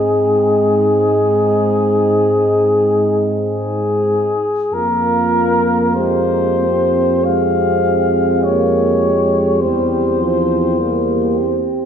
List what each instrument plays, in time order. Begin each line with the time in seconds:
Already playing: tuba G#2, trombone G#3, trombone section C4, french horn section D#4, flugelhorn G#4
3.41 flugelhorn G#4
4.72 tuba F2, trombone A#3, trombone section A#3, french horn section F4, flugelhorn A#4
5.94 trombone section G#3, french horn section G4, flugelhorn C5
6.59 trombone section C4
7.24 trombone G#3, trombone section C4, flugelhorn F5
8.43 trombone section A#3, flugelhorn C#5
9.04 trombone section G#3
9.61 tuba E2, trombone G3, trombone section C4, flugelhorn C5
10.20 trombone F3
10.79 trombone G3, trombone section A#3
11.37 trombone section C4